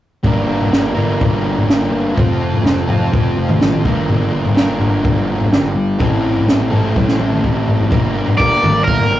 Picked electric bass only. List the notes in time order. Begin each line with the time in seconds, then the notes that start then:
0.24 G1
0.48 G1
0.72 G1
0.95 G1
1.21 G1
1.68 G1
1.92 G1
2.18 F1
2.64 F1
2.88 F1
3.13 F1
3.37 F1
3.61 A1
3.85 G1
4.09 G1
4.32 G1
4.56 G1
4.80 G1
5.05 G1
5.52 G1
5.75 G1
6.00 A1
6.48 A1
6.72 A1
6.96 A1
7.20 A1
7.44 A1
7.92 G1
8.40 G1
8.63 G1
8.87 G1
9.11 G1